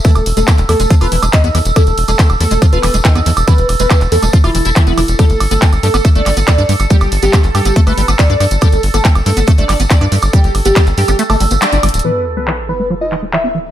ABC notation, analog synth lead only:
X:1
M:4/4
L:1/16
Q:1/4=140
K:none
V:1 name="Analog synth lead"
A2 z A2 z A2 z B2 z ^d2 z2 | A2 z A2 z A2 z B2 z ^d2 z2 | B2 z B2 z A2 z E2 z E2 z2 | A2 z A2 z A2 z d2 z d2 z2 |
G2 z G2 z G2 z B2 z d2 z2 | A2 z A2 z A2 z d2 z d2 z2 | G2 z G2 z G2 z A2 z d2 z2 | B2 z B2 z B2 z ^d2 z e2 z2 |]